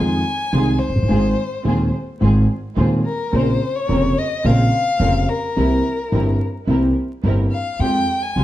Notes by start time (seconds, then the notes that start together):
Already playing: F2 D#3 F3 G#3 C4 D#4 F4 G#4 G#5
0.53 C2 C3 D#3 G#3 C4 D#4 F4 G#4
0.79 C5
0.88 F1
0.95 F#1
1.02 G1
1.09 G#1 G#2 D#3 G#3 C4 F4 G#4
1.65 D#1 D#2 D#3 G#3 C4 F4 G#4
2.21 G#1 G#2 D#3 G#3 C4 F4 G#4
2.76 D#1 D#2 D#3 G#3 C4 F4 G#4
3.06 A#4
3.31 A#1 A#2 C#3 A#3 C4 C#4 F4 A#4 C5
3.76 C#5
3.87 F1 F2 C#3 A#3 C4 C#4 F4 A#4
4.18 D#5
4.43 A#1 A#2 C#3 A#3 C4 C#4 F4 A#4 F5
4.99 F1 F2 C#3 A#3 C4 C#4 F4 A#4
5.29 A#4
5.56 C2 C3 E3 A#3 C4 E4 G4 A#4
6.12 G1 G2 E3 A#3 C4 E4 G4 A#4
6.67 C2 C3 E3 A#3 C4 E4 G4 A#4
7.23 G1 G2 E3 A#3 C4 E4 G4 A#4
7.52 F5
7.79 F2 F3 G#3 C4 F4 G4 G5
8.22 G#5
8.36 C2 C3 F3 G#3 C4 F4 G4